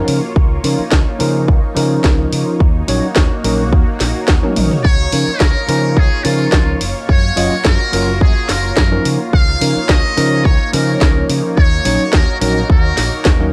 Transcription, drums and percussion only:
0.08 open hi-hat medium
0.36 kick loud
0.64 open hi-hat medium
0.91 kick medium
0.91 snare loud
1.20 open hi-hat medium
1.48 kick loud
1.76 open hi-hat medium
2.04 kick medium
2.04 snare loud
2.33 open hi-hat medium
2.60 kick loud
2.88 open hi-hat loud
3.16 kick medium
3.16 snare loud
3.44 open hi-hat medium
3.73 kick loud
4.00 snare medium
4.00 open hi-hat medium
4.28 kick medium
4.28 snare loud
4.43 high tom soft
4.56 open hi-hat medium
4.56 mid tom medium
4.71 mid tom medium
4.85 kick loud
5.12 open hi-hat loud
5.40 kick loud
5.40 snare loud
5.69 open hi-hat loud
5.97 kick loud
6.25 open hi-hat medium
6.52 kick loud
6.52 snare loud
6.81 open hi-hat loud
7.09 kick loud
7.37 open hi-hat loud
7.65 kick loud
7.65 snare loud
7.93 open hi-hat loud
8.21 kick loud
8.49 snare medium
8.49 open hi-hat loud
8.77 kick loud
8.77 snare loud
9.05 open hi-hat loud
9.33 kick loud
9.61 open hi-hat loud
9.89 kick loud
9.89 snare loud
10.18 open hi-hat loud
10.45 kick loud
10.73 open hi-hat loud
11.01 kick loud
11.01 snare loud
11.30 open hi-hat loud
11.57 kick loud
11.85 open hi-hat loud
12.13 kick loud
12.13 snare loud
12.41 open hi-hat loud
12.70 kick loud
12.97 snare medium
12.97 open hi-hat loud
13.25 kick loud
13.25 snare loud

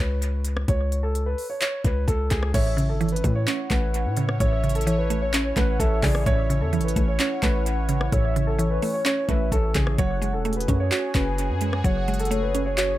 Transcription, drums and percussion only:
0.22 closed hi-hat medium
0.45 closed hi-hat medium
0.57 cross-stick loud
0.68 kick loud
0.68 closed hi-hat medium
0.92 closed hi-hat medium
1.15 closed hi-hat medium
1.38 open hi-hat medium
1.61 clap loud
1.61 closed hi-hat medium
1.84 kick medium
1.84 closed hi-hat medium
2.08 kick medium
2.08 closed hi-hat medium
2.31 kick medium
2.31 clap medium
2.31 closed hi-hat medium
2.43 cross-stick loud
2.54 kick loud
2.54 closed hi-hat medium
2.54 crash loud
2.78 closed hi-hat medium
3.01 closed hi-hat soft
3.09 closed hi-hat medium
3.16 closed hi-hat medium
3.24 kick medium
3.24 closed hi-hat medium
3.47 clap loud
3.47 closed hi-hat medium
3.71 kick loud
3.71 clap loud
3.71 closed hi-hat medium
3.94 closed hi-hat medium
4.17 closed hi-hat medium
4.29 cross-stick loud
4.40 kick loud
4.40 closed hi-hat medium
4.64 closed hi-hat soft
4.69 closed hi-hat soft
4.75 closed hi-hat medium
4.81 closed hi-hat medium
4.87 closed hi-hat medium
5.10 closed hi-hat medium
5.33 clap loud
5.33 closed hi-hat medium
5.57 kick loud
5.57 clap medium
5.57 closed hi-hat medium
5.80 kick medium
5.80 closed hi-hat medium
6.03 kick medium
6.03 clap medium
6.03 open hi-hat medium
6.15 cross-stick loud
6.26 kick loud
6.26 closed hi-hat medium
6.50 closed hi-hat medium
6.73 closed hi-hat soft
6.81 closed hi-hat medium
6.88 closed hi-hat medium
6.96 kick medium
6.96 closed hi-hat medium
7.19 clap loud
7.19 closed hi-hat medium
7.43 kick medium
7.43 clap loud
7.43 closed hi-hat medium
7.66 closed hi-hat medium
7.89 closed hi-hat medium
8.01 cross-stick loud
8.12 kick loud
8.12 closed hi-hat medium
8.36 closed hi-hat medium
8.59 closed hi-hat medium
8.82 open hi-hat medium
9.05 clap loud
9.05 closed hi-hat medium
9.29 kick loud
9.29 closed hi-hat medium
9.52 kick loud
9.52 closed hi-hat medium
9.75 kick medium
9.75 clap medium
9.75 closed hi-hat medium
9.87 cross-stick loud
9.98 kick loud
9.98 closed hi-hat medium
10.22 closed hi-hat medium
10.45 closed hi-hat soft
10.53 closed hi-hat medium
10.61 closed hi-hat medium
10.68 kick medium
10.68 closed hi-hat medium
10.92 clap loud
10.92 closed hi-hat medium
11.15 kick loud
11.15 clap loud
11.15 closed hi-hat medium
11.38 closed hi-hat medium
11.61 closed hi-hat medium
11.73 cross-stick loud
11.85 kick loud
11.85 closed hi-hat medium
12.08 closed hi-hat soft
12.14 closed hi-hat medium
12.19 closed hi-hat medium
12.25 closed hi-hat medium
12.31 closed hi-hat medium
12.55 closed hi-hat medium
12.78 clap loud
12.78 closed hi-hat medium

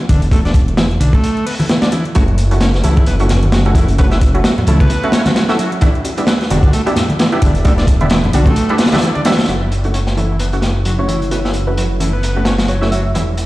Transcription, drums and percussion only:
0.09 kick medium
0.09 closed hi-hat medium
0.22 closed hi-hat soft
0.31 kick medium
0.31 closed hi-hat medium
0.31 closed hi-hat soft
0.31 high bongo medium
0.45 snare soft
0.45 closed hi-hat soft
0.54 kick loud
0.54 closed hi-hat medium
0.68 closed hi-hat soft
0.77 snare loud
0.77 closed hi-hat soft
0.77 closed hi-hat medium
0.77 high bongo soft
0.91 closed hi-hat soft
1.01 closed hi-hat medium
1.13 kick medium
1.13 closed hi-hat soft
1.13 high bongo medium
1.13 high conga medium
1.24 closed hi-hat medium
1.24 closed hi-hat soft
1.37 closed hi-hat soft
1.47 closed hi-hat medium
1.47 open hi-hat medium
1.59 closed hi-hat soft
1.59 high bongo soft
1.59 high conga medium
1.69 snare loud
1.69 closed hi-hat medium
1.69 closed hi-hat soft
1.82 snare loud
1.82 closed hi-hat medium
1.82 closed hi-hat soft
1.92 closed hi-hat medium
1.92 high bongo medium
2.05 closed hi-hat soft
2.15 kick loud
2.15 closed hi-hat soft
2.15 closed hi-hat medium
2.28 closed hi-hat soft
2.38 closed hi-hat medium
2.51 closed hi-hat soft
2.51 high bongo soft
2.61 snare loud
2.61 closed hi-hat soft
2.61 closed hi-hat medium
2.74 snare soft
2.74 closed hi-hat soft
2.84 closed hi-hat medium
2.84 high bongo medium
2.97 kick medium
2.97 closed hi-hat soft
2.97 high conga medium
3.06 closed hi-hat soft
3.06 closed hi-hat medium
3.20 closed hi-hat soft
3.29 snare medium
3.29 closed hi-hat medium
3.29 high bongo soft
3.29 low conga medium
3.43 closed hi-hat soft
3.43 high conga medium
3.52 snare loud
3.52 closed hi-hat medium
3.52 closed hi-hat soft
3.66 closed hi-hat soft
3.66 high bongo medium
3.75 kick medium
3.75 closed hi-hat medium
3.88 closed hi-hat soft
3.98 kick loud
3.98 closed hi-hat soft
3.98 closed hi-hat medium
4.11 snare soft
4.11 closed hi-hat soft
4.11 high bongo medium
4.21 kick medium
4.21 closed hi-hat medium
4.35 closed hi-hat soft
4.44 snare loud
4.44 closed hi-hat medium
4.44 closed hi-hat soft
4.44 high bongo medium
4.58 closed hi-hat soft
4.58 low conga medium
4.67 closed hi-hat medium
4.80 kick medium
4.80 closed hi-hat soft
4.80 high conga medium
4.90 closed hi-hat medium
4.90 closed hi-hat soft
4.90 high bongo soft
5.03 closed hi-hat soft
5.12 snare loud
5.12 closed hi-hat medium
5.25 snare loud
5.25 closed hi-hat medium
5.25 closed hi-hat soft
5.25 high bongo medium
5.25 high conga medium
5.36 snare loud
5.36 closed hi-hat medium
5.36 closed hi-hat soft
5.49 snare soft
5.49 closed hi-hat soft
5.59 closed hi-hat medium
5.72 closed hi-hat soft
5.72 high bongo soft
5.81 kick loud
5.81 closed hi-hat medium
5.81 closed hi-hat soft
5.95 closed hi-hat soft
6.05 closed hi-hat medium
6.05 high bongo medium
6.17 closed hi-hat soft
6.27 snare loud
6.27 closed hi-hat medium
6.27 closed hi-hat soft
6.41 snare soft
6.41 closed hi-hat soft
6.50 closed hi-hat medium
6.50 high bongo soft
6.63 kick loud
6.63 closed hi-hat soft
6.63 high conga medium
6.73 closed hi-hat medium
6.73 closed hi-hat soft
6.87 closed hi-hat soft
6.87 high bongo medium
6.96 snare medium
6.96 closed hi-hat medium
6.96 low conga medium
7.09 closed hi-hat soft
7.09 high conga medium
7.19 snare loud
7.19 closed hi-hat medium
7.19 closed hi-hat soft
7.32 closed hi-hat soft
7.32 high bongo medium
7.42 kick medium
7.42 closed hi-hat medium
7.55 closed hi-hat soft
7.65 kick loud
7.65 closed hi-hat soft
7.65 closed hi-hat medium
7.65 high bongo medium
7.78 snare soft
7.78 closed hi-hat soft
7.87 kick medium
7.87 closed hi-hat medium
8.01 closed hi-hat soft
8.01 high conga medium
8.10 snare loud
8.10 closed hi-hat medium
8.10 closed hi-hat soft
8.10 high bongo medium
8.24 closed hi-hat soft
8.24 low conga loud
8.33 closed hi-hat medium
8.46 kick medium
8.46 closed hi-hat soft
8.46 high bongo medium
8.46 high conga medium
8.56 closed hi-hat medium
8.56 closed hi-hat soft
8.69 closed hi-hat soft
8.78 snare medium
8.78 closed hi-hat medium
8.86 snare medium
8.86 closed hi-hat medium
8.92 snare medium
8.92 closed hi-hat medium
8.92 closed hi-hat soft
8.92 high bongo medium
8.92 high conga medium
8.97 snare medium
8.97 closed hi-hat medium
9.02 closed hi-hat soft
9.02 closed hi-hat medium
9.15 closed hi-hat soft
9.15 high conga medium
9.25 snare medium
9.25 closed hi-hat medium
9.25 high bongo medium
9.32 snare medium
9.32 closed hi-hat medium
9.38 snare medium
9.38 closed hi-hat soft
9.38 closed hi-hat medium
9.43 snare medium
9.43 closed hi-hat medium
9.48 closed hi-hat medium
9.72 closed hi-hat medium
9.84 closed hi-hat soft
9.94 closed hi-hat medium
10.07 snare soft
10.17 closed hi-hat medium
10.39 closed hi-hat medium
10.53 closed hi-hat soft
10.62 snare medium
10.62 closed hi-hat medium
10.85 closed hi-hat medium
11.09 closed hi-hat medium
11.22 closed hi-hat soft
11.31 closed hi-hat medium
11.45 snare soft
11.54 closed hi-hat medium
11.77 closed hi-hat medium
12.00 closed hi-hat medium
12.23 closed hi-hat medium
12.45 snare medium
12.45 closed hi-hat medium
12.58 snare medium
12.58 closed hi-hat medium
12.68 closed hi-hat medium
12.82 snare soft
12.92 closed hi-hat medium
13.15 closed hi-hat medium
13.37 closed hi-hat medium

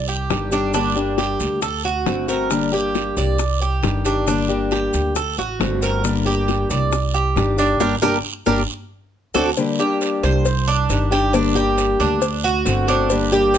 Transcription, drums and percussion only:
0.08 maracas soft
0.30 high bongo medium
0.30 low bongo medium
0.30 short guiro medium
0.30 maracas soft
0.52 short guiro medium
0.52 maracas medium
0.74 high bongo medium
0.74 long guiro medium
0.74 maracas medium
0.96 high bongo soft
0.96 maracas soft
1.18 high bongo medium
1.18 short guiro medium
1.18 maracas soft
1.40 high bongo soft
1.40 short guiro medium
1.40 maracas medium
1.62 high bongo medium
1.62 long guiro medium
1.62 maracas medium
1.84 high bongo soft
1.84 maracas soft
2.06 high bongo medium
2.06 low bongo medium
2.06 short guiro medium
2.06 maracas soft
2.28 short guiro medium
2.28 maracas medium
2.50 high bongo medium
2.50 long guiro medium
2.50 maracas medium
2.73 maracas soft
2.95 high bongo medium
2.95 short guiro medium
2.95 maracas soft
3.17 short guiro medium
3.17 maracas medium
3.38 high bongo medium
3.38 long guiro medium
3.38 maracas medium
3.61 maracas soft
3.83 high bongo medium
3.83 low bongo medium
3.83 short guiro medium
3.83 maracas soft
4.04 short guiro medium
4.04 maracas medium
4.27 high bongo medium
4.27 long guiro medium
4.27 maracas medium
4.50 high bongo soft
4.50 maracas soft
4.71 high bongo medium
4.71 short guiro medium
4.71 maracas soft
4.93 high bongo soft
4.93 short guiro medium
4.93 maracas medium
5.16 high bongo medium
5.16 long guiro medium
5.16 maracas medium
5.38 high bongo soft
5.38 maracas soft
5.60 high bongo medium
5.60 low bongo medium
5.60 short guiro medium
5.60 maracas soft
5.82 short guiro medium
5.82 maracas medium
6.04 high bongo medium
6.04 long guiro medium
6.04 maracas medium
6.26 maracas soft
6.48 high bongo medium
6.48 short guiro medium
6.48 maracas soft
6.70 short guiro medium
6.70 maracas medium
6.92 high bongo medium
6.92 long guiro medium
6.92 maracas medium
7.14 maracas soft
7.36 high bongo medium
7.36 low bongo medium
7.36 short guiro medium
7.36 maracas soft
7.58 short guiro medium
7.58 maracas medium
7.80 high bongo loud
7.80 long guiro medium
7.80 maracas medium
8.02 high bongo loud
8.02 long guiro loud
8.02 maracas medium
8.46 high bongo loud
8.46 long guiro medium
8.46 maracas medium
9.35 high bongo loud
9.35 long guiro loud
9.35 maracas medium
9.57 cowbell loud
9.57 long guiro medium
9.57 maracas medium
9.79 maracas soft
10.01 cowbell medium
10.01 short guiro medium
10.01 maracas medium
10.23 cowbell medium
10.23 short guiro medium
10.23 maracas soft
10.45 cowbell loud
10.45 long guiro medium
10.45 maracas medium
10.68 maracas soft
10.90 cowbell medium
10.90 short guiro medium
10.90 maracas medium
11.12 cowbell medium
11.12 short guiro medium
11.12 maracas soft
11.33 cowbell loud
11.33 long guiro medium
11.33 maracas medium
11.56 maracas soft
11.78 cowbell medium
11.78 short guiro medium
11.78 maracas medium
12.00 short guiro medium
12.00 maracas soft
12.22 cowbell loud
12.22 long guiro medium
12.22 maracas medium
12.44 maracas soft
12.65 cowbell medium
12.65 short guiro medium
12.65 maracas medium
12.88 cowbell medium
12.88 short guiro medium
12.88 maracas soft
13.10 cowbell loud
13.10 long guiro medium
13.10 maracas medium
13.32 maracas soft
13.54 cowbell medium
13.54 short guiro medium
13.54 maracas medium

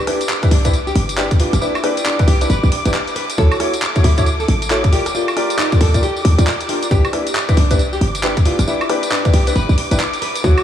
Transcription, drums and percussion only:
0.07 cross-stick medium
0.07 open hi-hat loud
0.21 closed hi-hat medium
0.21 tambourine medium
0.29 clap loud
0.29 tambourine soft
0.43 kick loud
0.43 cross-stick soft
0.43 closed hi-hat soft
0.43 tambourine soft
0.51 open hi-hat loud
0.65 kick medium
0.65 closed hi-hat medium
0.65 tambourine medium
0.73 closed hi-hat soft
0.73 tambourine medium
0.87 tambourine soft
0.95 open hi-hat loud
1.09 closed hi-hat medium
1.09 tambourine medium
1.18 clap loud
1.18 tambourine medium
1.31 kick loud
1.31 closed hi-hat medium
1.31 tambourine soft
1.40 open hi-hat loud
1.53 cross-stick medium
1.53 closed hi-hat medium
1.53 tambourine medium
1.62 tambourine soft
1.75 tambourine soft
1.75 high woodblock medium
1.84 cross-stick medium
1.84 open hi-hat loud
1.97 closed hi-hat medium
1.97 tambourine medium
2.06 clap loud
2.06 tambourine medium
2.19 kick loud
2.19 cross-stick soft
2.19 closed hi-hat soft
2.19 tambourine soft
2.28 open hi-hat loud
2.41 closed hi-hat medium
2.41 tambourine medium
2.50 closed hi-hat soft
2.50 tambourine soft
2.63 tambourine soft
2.72 open hi-hat loud
2.85 closed hi-hat medium
2.85 tambourine medium
2.94 clap loud
2.94 tambourine medium
3.08 closed hi-hat medium
3.08 tambourine soft
3.16 open hi-hat loud
3.30 closed hi-hat medium
3.30 tambourine medium
3.38 kick loud
3.38 tambourine medium
3.52 tambourine soft
3.52 high woodblock medium
3.60 cross-stick medium
3.60 open hi-hat loud
3.74 closed hi-hat medium
3.74 tambourine medium
3.82 clap loud
3.82 tambourine medium
3.96 kick loud
3.96 cross-stick soft
3.96 closed hi-hat soft
3.96 tambourine soft
4.04 open hi-hat loud
4.18 kick medium
4.18 closed hi-hat medium
4.18 tambourine medium
4.26 closed hi-hat soft
4.26 tambourine medium
4.40 tambourine soft
4.48 open hi-hat loud
4.62 closed hi-hat medium
4.62 tambourine medium
4.70 clap loud
4.70 tambourine medium
4.84 kick loud
4.84 closed hi-hat soft
4.84 tambourine soft
4.93 open hi-hat loud
5.06 cross-stick medium
5.06 closed hi-hat medium
5.06 tambourine medium
5.15 tambourine medium
5.28 tambourine soft
5.28 high woodblock medium
5.37 cross-stick medium
5.37 open hi-hat loud
5.50 closed hi-hat medium
5.50 tambourine medium
5.59 clap loud
5.59 tambourine medium
5.72 kick loud
5.72 cross-stick soft
5.72 closed hi-hat soft
5.72 tambourine soft
5.81 open hi-hat loud
5.94 kick medium
5.94 closed hi-hat medium
5.94 tambourine medium
6.03 closed hi-hat soft
6.03 tambourine medium
6.16 tambourine soft
6.25 open hi-hat loud
6.39 closed hi-hat medium
6.39 tambourine medium
6.47 clap loud
6.47 tambourine medium
6.60 closed hi-hat soft
6.60 tambourine soft
6.69 open hi-hat loud
6.83 closed hi-hat medium
6.83 tambourine medium
6.91 kick loud
6.91 tambourine medium
7.05 tambourine soft
7.05 high woodblock medium
7.13 cross-stick medium
7.13 open hi-hat loud
7.27 closed hi-hat medium
7.27 tambourine medium
7.35 clap loud
7.35 tambourine medium
7.49 kick loud
7.49 cross-stick soft
7.49 closed hi-hat soft
7.49 tambourine soft
7.57 open hi-hat loud
7.71 kick medium
7.71 closed hi-hat medium
7.71 tambourine medium
7.79 closed hi-hat soft
7.79 tambourine medium
7.93 tambourine soft
8.01 open hi-hat loud
8.15 closed hi-hat medium
8.15 tambourine medium
8.23 clap loud
8.37 kick loud
8.37 closed hi-hat medium
8.37 tambourine soft
8.45 open hi-hat loud
8.59 cross-stick medium
8.59 closed hi-hat medium
8.59 tambourine medium
8.67 tambourine medium
8.81 tambourine soft
8.81 high woodblock medium
8.89 cross-stick medium
8.89 open hi-hat loud
9.03 closed hi-hat medium
9.03 tambourine medium
9.12 clap loud
9.12 tambourine medium
9.25 kick loud
9.25 cross-stick soft
9.25 closed hi-hat soft
9.25 tambourine soft
9.34 open hi-hat loud
9.47 closed hi-hat medium
9.47 tambourine medium
9.56 closed hi-hat soft
9.56 tambourine medium
9.69 tambourine soft
9.78 open hi-hat loud
9.91 closed hi-hat medium
9.91 tambourine medium
10.00 clap loud
10.00 tambourine medium
10.13 closed hi-hat medium
10.13 tambourine soft
10.22 open hi-hat loud
10.35 closed hi-hat medium
10.35 tambourine medium
10.44 kick loud
10.44 tambourine medium
10.58 tambourine soft
10.58 high woodblock medium

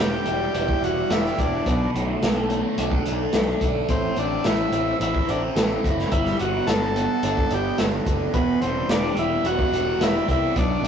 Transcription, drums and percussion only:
0.26 closed hi-hat medium
0.54 closed hi-hat medium
0.68 kick medium
0.84 closed hi-hat medium
1.10 snare loud
1.10 closed hi-hat medium
1.26 snare soft
1.38 kick medium
1.38 closed hi-hat medium
1.66 kick medium
1.66 closed hi-hat medium
1.96 closed hi-hat medium
2.23 snare loud
2.23 closed hi-hat medium
2.50 closed hi-hat medium
2.78 closed hi-hat medium
2.92 kick medium
3.06 closed hi-hat medium
3.33 snare medium
3.33 closed hi-hat medium
3.61 kick medium
3.61 closed hi-hat medium
3.89 kick medium
3.89 closed hi-hat medium
4.16 closed hi-hat medium
4.44 snare medium
4.44 closed hi-hat medium
4.72 closed hi-hat medium
5.01 closed hi-hat medium
5.15 kick medium
5.29 closed hi-hat medium
5.56 snare loud
5.56 closed hi-hat medium
5.84 kick medium
5.84 closed hi-hat medium
5.99 snare soft
6.12 kick loud
6.12 closed hi-hat medium
6.26 snare soft
6.39 closed hi-hat medium
6.67 snare loud
6.67 closed hi-hat medium
6.96 closed hi-hat medium
7.23 closed hi-hat medium
7.37 kick medium
7.50 closed hi-hat medium
7.78 snare loud
7.78 closed hi-hat medium
8.06 kick medium
8.06 closed hi-hat medium
8.34 kick loud
8.34 closed hi-hat medium
8.62 closed hi-hat medium
8.89 snare loud
8.89 closed hi-hat medium
9.17 closed hi-hat medium
9.45 closed hi-hat medium
9.59 kick medium
9.73 closed hi-hat medium
10.01 snare loud
10.01 closed hi-hat medium
10.28 kick medium
10.28 closed hi-hat medium
10.56 kick loud
10.56 closed hi-hat medium
10.84 closed hi-hat medium

